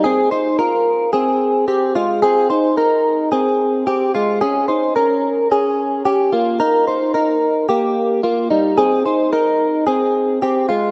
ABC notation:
X:1
M:4/4
L:1/8
Q:1/4=110
K:Ab
V:1 name="Clean electric guitar"
[CA] [Ec] [FB]2 [CA]2 [CG] [A,F] | [CA] [Ec] [EB]2 [CA]2 [CG] [A,F] | [DA] [Ec] [DB]2 [DA]2 [DG] [B,F] | [EB] [Ec] [EB]2 [B,G]2 [B,F] [G,E] |
[CA] [Ec] [EB]2 [CA]2 [CG] [A,F] |]